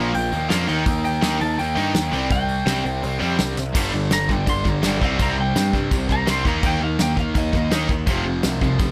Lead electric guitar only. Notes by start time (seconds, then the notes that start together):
Already playing: A#5
0.15 G5
0.50 F5
0.68 G5
1.05 G5
1.41 A5
1.59 G5
2.32 G5
4.13 A#5
4.31 G5
4.50 C6
4.68 A#5
4.86 G5
5.05 F5
5.22 A#5
5.40 G5
6.12 A#5
6.30 C6
6.48 A#5
6.66 G5
6.84 F5
7.02 G5
7.20 F5
7.38 D#5